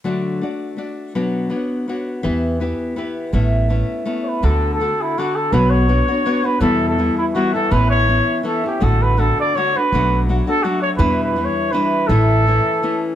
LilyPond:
<<
  \new Staff \with { instrumentName = "Trumpet" } { \time 3/4 \key d \major \tempo 4 = 164 r2. | r2. | r2. | r2 r16. cis''32 b'8 |
a'8. a'8. e'8 fis'8 a'8 | b'8 cis''2 b'8 | a'8. a'8. e'8 fis'8 a'8 | b'8 cis''4. a'8 g'8 |
a'8 b'8 a'8 d''8 cis''8 b'8~ | b'8. r8. a'8 fis'8 cis''8 | b'8. b'16~ \tuplet 3/2 { b'8 cis''4 } b'4 | a'2~ a'8 r8 | }
  \new Staff \with { instrumentName = "Nylon-string guitar" } { \time 3/4 \key d \major <d fis a d' fis' d''>4 <a d' fis' d''>4 <a d' fis' d''>4 | <b, fis b d' fis' cis''>4 <b d' fis' cis''>4 <b d' fis' cis''>4 | <e b e' g' b'>4 <b e' g' b'>4 <b e' g' b'>4 | <a, a b cis' e'>4 <a b cis' e'>4 <a b cis' e'>4 |
<d d' fis' a'>4 <d d' fis' a'>4 <d d' fis' a'>4 | <b, fis b d' fis' cis''>4 <b d' fis' cis''>8 <b d' fis' cis''>8 <b d' fis' cis''>8 <b d' fis' cis''>8 | <e, b, e g b e'>4 <e g b e'>4 <e g b e'>8 <e g b e'>8 | <a, e b cis' e'>4 <e b cis' e'>4 <e b cis' e'>8 <b cis' e'>8 |
<a, d a d' fis'>4 <d a d' fis'>4 <d a d' fis'>8 <a d' fis'>8 | <b, fis a d' fis'>4 <fis a d' fis'>8 <a d' fis'>8 <fis a d' fis'>4 | <e, b, e g d' e'>4 <e g d' e'>4 <e g d' e'>4 | <a, e a cis' e'>4 <e a cis' e'>4 <e a cis' e'>4 | }
  \new Staff \with { instrumentName = "Upright bass" } { \clef bass \time 3/4 \key d \major r2. | r2. | e,2 r4 | a,,2 r4 |
d,2 r4 | b,,2 r4 | e,2 r4 | a,,2 r4 |
a,,2 r4 | b,,2 r4 | e,2 r4 | a,,2 r4 | }
>>